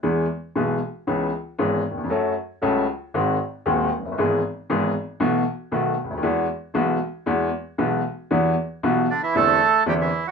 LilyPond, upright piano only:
\new Staff \with { instrumentName = "Upright piano" } { \clef bass \time 4/4 \key e \major \tempo 4 = 116 <e, e gis b gis'>8 r8 <b,, b, e gis b gis'>8 r8 <cis, cis e b cis' gis'>8 r8 <gis,, gis, e b cis' gis'>8 r32 dis,32 e,32 f,32 | <fis, fis a cis' a'>8 r8 <cis, cis fis a cis' a'>8 r8 <gis,, gis, dis gis bis fis'>8 r8 <dis,, dis, dis gis bis fis'>8 r32 f,,32 fis,,32 g,,32 | <gis,, gis, e gis b gis'>8 r8 <gis,, gis, e gis b gis'>8 r8 <b,, b, e a b fis'>8 r8 <b,, b, dis a b fis'>8 r32 cis,32 d,32 dis,32 | <e, e gis b fis'>8 r8 <b,, b, e gis b fis'>8 r8 <e, e gis b fis'>8 r8 <b,, b, e gis b fis'>8 r8 |
\key e \minor <e, e g b fis'>8 r8 <b,, b, e g b fis'>8 r8 <e, d e g c' e'>8 r8 <e, d e g c' e'>8 r8 | }